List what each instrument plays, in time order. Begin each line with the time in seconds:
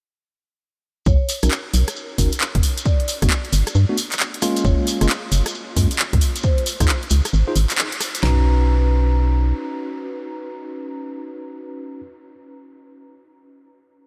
1.06 fm bass B1, vibraphone C#5, kick, shekere
1.29 open hi-hat, shekere
1.43 fm bass B1, tine electric piano C#4 D#4 F#4 A#4, cross-stick, closed hi-hat, shekere
1.51 clap, shekere
1.74 fm bass B1, open hi-hat, shekere
1.88 cross-stick, closed hi-hat, shekere
1.96 shekere
2.18 fm bass F#1, tine electric piano C#4 D#4 F#4 A#4, kick, open hi-hat, shekere
2.32 closed hi-hat, shekere
2.40 clap, shekere
2.55 fm bass F#1, kick, closed hi-hat
2.63 open hi-hat, shekere
2.78 closed hi-hat, shekere
2.85 vibraphone D5, kick, shekere
3.00 closed hi-hat
3.08 open hi-hat, shekere
3.22 fm bass G1, tine electric piano A3 B3 D4 F#4, kick, cross-stick, closed hi-hat, shekere
3.30 clap, shekere
3.45 closed hi-hat
3.53 fm bass G1, open hi-hat, shekere
3.67 cross-stick, closed hi-hat, shekere
3.75 fm bass G2, shekere
3.89 tine electric piano A3 B3 D4 F#4
3.98 open hi-hat, shekere
4.12 clap, closed hi-hat, shekere
4.20 clap, shekere
4.34 closed hi-hat
4.42 tine electric piano G#3 A#3 C#4 F4, cross-stick, open hi-hat, shekere
4.56 closed hi-hat, shekere
4.65 fm bass F#1, vibraphone C#5, kick, shekere
4.87 open hi-hat, shekere
5.01 fm bass F#1, tine electric piano G#3 A#3 C#4 F4, cross-stick, closed hi-hat, shekere
5.09 clap, shekere
5.32 fm bass F#1, open hi-hat, shekere
5.46 cross-stick, closed hi-hat, shekere
5.54 shekere
5.77 fm bass F#2, tine electric piano G#3 A#3 C#4 F4, kick, open hi-hat, shekere
5.91 closed hi-hat, shekere
5.99 clap, shekere
6.13 fm bass C#2, kick, closed hi-hat
6.21 open hi-hat, shekere
6.36 closed hi-hat, shekere
6.43 vibraphone C5, kick, shekere
6.58 closed hi-hat
6.66 open hi-hat, shekere
6.80 fm bass C#2, tine electric piano D#4 F4 G#4 C5, kick, cross-stick, closed hi-hat, shekere
6.88 clap, shekere
7.03 closed hi-hat
7.10 fm bass C#2, open hi-hat, shekere
7.25 cross-stick, closed hi-hat, shekere
7.33 fm bass G#1, shekere
7.48 tine electric piano D#4 F4 G#4 C5
7.56 fm bass G#1, open hi-hat, shekere
7.70 clap, closed hi-hat, shekere
7.78 clap, shekere
7.92 closed hi-hat
8.01 cross-stick, open hi-hat, shekere
8.14 closed hi-hat, shekere
8.23 fm bass B1, tine electric piano C#4 D#4 F#4 A#5, vibraphone B4, snare, floor tom